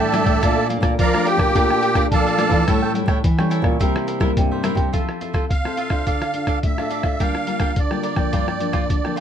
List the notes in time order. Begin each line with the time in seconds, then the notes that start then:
Already playing: A2 E3 A4 D5 E5 A5
0.00 A4 E5 G5
0.12 G3 D4 E4 A4 E5 G5, cross-stick, closed hi-hat
0.24 A2 A4 E5 G5, kick, closed hi-hat
0.41 A#2 A3 D4 F4 A#4 D5 F5 A5, kick, cross-stick, closed hi-hat
0.57 D5 F5 A5
0.69 A3 D4 F4 A#4 D5 F5 A5, closed hi-hat
0.81 A#2 A#4 D5 F5 A5, kick, cross-stick, closed hi-hat
0.98 F3 A#4 D5 F5 A#5, kick, closed hi-hat
1.13 A3 D4 F4 D5 F5 A5, cross-stick
1.25 G4 A#4 D5 F5 G5 A5, closed hi-hat
1.37 A#2, kick, cross-stick
1.54 A#2 A3 D4 F4 A#4 D5 F5 A5, kick, closed hi-hat
1.70 cross-stick
1.82 A#4 D5 F5 A5, closed hi-hat
1.95 A3 D4 F4 A#4 D5 F5 A5, kick, cross-stick, closed hi-hat
2.11 A#2 F3 A4 D5 F5 A5, kick, closed hi-hat
2.26 D5 F5 A5, closed hi-hat
2.38 A3 D4 F4 A#4 D5 F5 A5, cross-stick, closed hi-hat
2.49 E3 D5 F5 A5, kick, closed hi-hat
2.67 A2 G3 C#4 E4 A4 C#5 G5, kick, cross-stick, closed hi-hat
2.82 A4 C#5 G5
2.94 G3 C#4 E4 A4 C#5 G5, closed hi-hat
3.06 A2 E4 A4 C#5 G5, kick, cross-stick
3.24 E3, kick, closed hi-hat
3.38 G3 C#4 E4 A4 C#5 G5, cross-stick
3.50 E4 A4 C#5 G5, closed hi-hat
3.62 A#2, kick, cross-stick
3.80 C3 G3 A#3 E4 A#4 C5 E5, kick, closed hi-hat
3.96 cross-stick
4.07 E4 A#4 C5 E5, closed hi-hat
4.20 G3 A#3 E4 A#4 C5 E5, kick, cross-stick
4.37 G2 C3, kick, closed hi-hat
4.51 A#4 C5 E5
4.63 G3 A#3 E4 A#4 C5 E5, cross-stick, closed hi-hat
4.75 C3 A#4 C5 E5, kick, closed hi-hat
4.93 F3 C4 E4 F4 A4 C5 E5, kick, closed hi-hat
5.09 cross-stick
5.20 C4 E4 F4 A4 C5 E5, closed hi-hat
5.33 F4 A4 C5 E5, kick, cross-stick
5.50 C3 F5, kick, closed hi-hat
5.65 C4 E4 A4 C5 E5, cross-stick
5.77 F4 A4 C5 E5, closed hi-hat
5.90 D4 F4 A4 C5 E5, kick, cross-stick
6.06 D3 D4 A4 D5 F5, kick, closed hi-hat
6.22 A4 D5 F5, cross-stick, closed hi-hat
6.34 D4 F4 A4, closed hi-hat
6.47 D4 A4 D5 F5, kick, cross-stick, closed hi-hat
6.63 A2 E5, kick, closed hi-hat
6.78 D4 F4 A4 D5 F5, cross-stick
6.90 D4 A4 D5 F5, closed hi-hat
7.03 A4 D5 F5, kick, cross-stick
7.20 D3 G3 A#3 D4 F4 A#4 D5 F5 G5, kick, closed hi-hat
7.35 cross-stick
7.47 G3 A#3 D4 F4 A#4 D5 G5, closed hi-hat
7.59 D4 A#4 D5 G5, kick, cross-stick, closed hi-hat
7.76 D3 D5, kick, closed hi-hat
7.91 G3 A#3 F4 A#4 D5 G5, cross-stick
8.03 D4 A#4 D5 G5, closed hi-hat
8.16 F3 A#3 D4 A#4 D5 G5, kick, cross-stick
8.33 G2 F4 A#4 D5 G5, kick, closed hi-hat
8.47 A#4 D5 G5, cross-stick
8.60 F3 A#3 D4, closed hi-hat
8.73 F4 A#4 D5 G5, kick, cross-stick, closed hi-hat
8.90 D3, kick, closed hi-hat
9.04 F3 A#3 D4 A#4 D5 G5, cross-stick
9.16 F4 A#4 D5